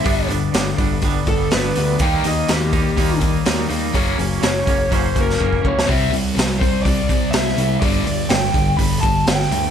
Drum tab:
HH |o-o-o-o-o-o-o-o-|o-o-o-o-o-o-o-o-|o-o-o-o-o-o-----|o-o-o-o-o-o-o-o-|
SD |----o-------o---|----o-------o---|----o------o---o|----o-------oo--|
BD |o-----o-o-o-----|o-----o-o-o-----|o-----o-o-o-ooo-|o-----o-o-o-----|

HH |o-o-o-o-o-o-o-o-|
SD |----o-------oo--|
BD |o-----o-o-o-----|